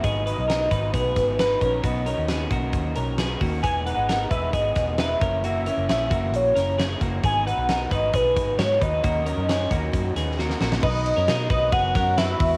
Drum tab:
CC |----------------|----------------|----------------|----------------|
RD |----------------|----------------|----------------|----------------|
HH |x-x-x-x-x-x-x-x-|x-x-x-x-x-x-x-o-|x-x-x-x-x-x-x-x-|x-x-x-x-x-x-x-x-|
SD |----o-----o-o---|----o-------o---|----o-----o-o---|----o-----o-o---|
BD |o-----o-o-o---o-|o-----o-o-----o-|o-----o-o-o---o-|------o-------o-|

CC |----------------|----------------|x---------------|
RD |----------------|----------------|--x-x-x-x-x-x-x-|
HH |x-x-x-x-x-x-x-x-|x-x-x-x-x-x-----|--------------o-|
SD |----o-------o---|----o-----o-oooo|----o-----o-o---|
BD |o-----o-o-o---o-|o-----o-o-------|o-----o-o-o---o-|